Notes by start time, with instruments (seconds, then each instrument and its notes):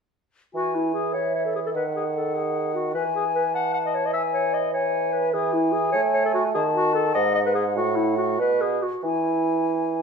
0.54 bassoon E3, clarinet F#4, flute G#5
0.75 clarinet E4
0.94 clarinet G#4
1.14 clarinet C#5, flute E5
1.35 clarinet C#5
1.45 clarinet A4
1.55 clarinet G#4
1.66 clarinet A4
1.75 bassoon D#3, clarinet B4, flute F#5
1.96 clarinet G#4
2.17 clarinet A4
2.35 clarinet G#4
2.75 clarinet F#4
2.94 bassoon E3, clarinet B4, flute G#5
3.16 clarinet G#4
3.35 clarinet B4
3.54 clarinet F#5, flute A5
3.74 clarinet F#5
3.86 clarinet D#5
3.95 clarinet C#5
4.06 clarinet D#5
4.14 clarinet E5, flute G#5
4.34 clarinet C#5
4.54 clarinet D#5
4.73 clarinet C#5, flute G#5
5.13 clarinet B4
5.34 bassoon E3, clarinet G#4, flute G#5
5.53 clarinet E4
5.73 clarinet G#4
5.92 bassoon A3, clarinet C#5
6.14 clarinet C#5
6.26 clarinet A4
6.34 clarinet F#4
6.55 bassoon D#3, clarinet G#4, flute A5
6.75 clarinet F#4
6.95 clarinet A4
7.15 bassoon G#2, clarinet D#5, flute F#5
7.35 clarinet D#5
7.46 clarinet B4
7.55 clarinet G#4
7.76 bassoon A2, clarinet F#4
7.96 clarinet E4
8.18 clarinet F#4
8.39 bassoon B2, clarinet B4
8.62 clarinet G#4
8.83 clarinet F#4
9.03 bassoon E3, clarinet E4, flute G#5